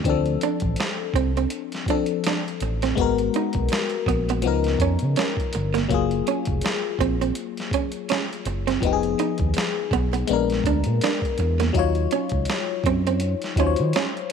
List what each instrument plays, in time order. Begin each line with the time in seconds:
0.04 analog synth bass D2, fm electric piano E3 C4 D4, kick, closed hi-hat
0.09 fm electric piano F3 A4
0.26 closed hi-hat
0.41 hollow-body jazz guitar D4, closed hi-hat
0.60 analog synth bass A1, kick, closed hi-hat
0.76 muted hollow-body jazz guitar stroke, closed hi-hat
0.80 snare
1.14 analog synth bass C2, hollow-body jazz guitar C4, kick, closed hi-hat
1.37 hollow-body jazz guitar C4, closed hi-hat
1.50 closed hi-hat
1.72 snare, closed hi-hat
1.86 fm electric piano F3 C4 D4, hollow-body jazz guitar D4, kick, closed hi-hat
1.91 fm electric piano A4
2.06 closed hi-hat
2.24 hollow-body jazz guitar D4, snare, closed hi-hat
2.48 closed hi-hat
2.60 analog synth bass A1, muted hollow-body jazz guitar stroke, closed hi-hat
2.82 hollow-body jazz guitar C4, snare, closed hi-hat
2.95 analog synth bass G#1, fm electric piano G#3 B3, kick, closed hi-hat
2.99 fm electric piano F#4 A#4
3.18 closed hi-hat
3.34 hollow-body jazz guitar D#4, closed hi-hat
3.53 analog synth bass B1, kick, closed hi-hat
3.69 muted hollow-body jazz guitar stroke, closed hi-hat
3.73 snare
3.90 closed hi-hat
4.06 analog synth bass A#1, hollow-body jazz guitar B3, kick, closed hi-hat
4.29 hollow-body jazz guitar B3, closed hi-hat
4.42 analog synth bass C#2, fm electric piano F3 B3 D#4, closed hi-hat
4.47 fm electric piano A#4
4.64 snare, closed hi-hat
4.79 analog synth bass F2, hollow-body jazz guitar C#4, kick, closed hi-hat
4.99 analog synth bass C#3, closed hi-hat
5.16 hollow-body jazz guitar C#4, snare, closed hi-hat
5.37 kick, closed hi-hat
5.53 analog synth bass G1, muted hollow-body jazz guitar stroke, closed hi-hat
5.74 hollow-body jazz guitar A#3, snare, closed hi-hat
5.89 analog synth bass F#1, fm electric piano F#3 A#3 F4, kick, closed hi-hat
5.94 fm electric piano G#4
6.11 closed hi-hat
6.27 hollow-body jazz guitar C#4, closed hi-hat
6.45 analog synth bass F1, kick, closed hi-hat
6.61 muted hollow-body jazz guitar stroke, closed hi-hat
6.66 snare
6.99 analog synth bass A#1, hollow-body jazz guitar C4, kick, closed hi-hat
7.21 hollow-body jazz guitar C4, closed hi-hat
7.35 closed hi-hat
7.57 snare, closed hi-hat
7.71 hollow-body jazz guitar C#4, kick, closed hi-hat
7.92 closed hi-hat
8.09 hollow-body jazz guitar C#4, snare, closed hi-hat
8.33 closed hi-hat
8.45 analog synth bass F#1, muted hollow-body jazz guitar stroke, closed hi-hat
8.67 hollow-body jazz guitar C4, snare, closed hi-hat
8.81 analog synth bass F1, fm electric piano F3 B3, kick, closed hi-hat
8.85 fm electric piano D#4 G4
8.93 fm electric piano G#4
9.03 closed hi-hat
9.19 hollow-body jazz guitar D#4, closed hi-hat
9.38 analog synth bass D#2, kick, closed hi-hat
9.54 muted hollow-body jazz guitar stroke, closed hi-hat
9.58 snare
9.91 analog synth bass B1, hollow-body jazz guitar B3, kick, closed hi-hat
10.13 hollow-body jazz guitar B3, closed hi-hat
10.27 analog synth bass A#1, fm electric piano G#3 B3 D4, closed hi-hat
10.33 fm electric piano A#4
10.50 snare, closed hi-hat
10.64 analog synth bass D2, hollow-body jazz guitar D4, kick, closed hi-hat
10.84 analog synth bass A#2, closed hi-hat
11.01 hollow-body jazz guitar D4, snare, closed hi-hat
11.22 kick, closed hi-hat
11.38 analog synth bass E2, muted hollow-body jazz guitar stroke, closed hi-hat
11.60 hollow-body jazz guitar A#3, snare, closed hi-hat
11.73 analog synth bass D#2, fm electric piano F#3 D#4, kick, closed hi-hat
11.77 fm electric piano F4 C#5
11.95 closed hi-hat
12.11 hollow-body jazz guitar C#4, closed hi-hat
12.29 analog synth bass C#2, kick, closed hi-hat
12.45 closed hi-hat
12.50 muted hollow-body jazz guitar stroke, snare
12.84 analog synth bass F#2, hollow-body jazz guitar C4, kick, closed hi-hat
13.07 hollow-body jazz guitar C4, closed hi-hat
13.20 closed hi-hat
13.42 snare, closed hi-hat
13.56 analog synth bass D#2, fm electric piano F#3 D#4 F4 C5, hollow-body jazz guitar C#4, kick, closed hi-hat
13.67 fm electric piano C#5
13.76 analog synth bass D#3, closed hi-hat
13.93 hollow-body jazz guitar C#4, snare, closed hi-hat
14.17 closed hi-hat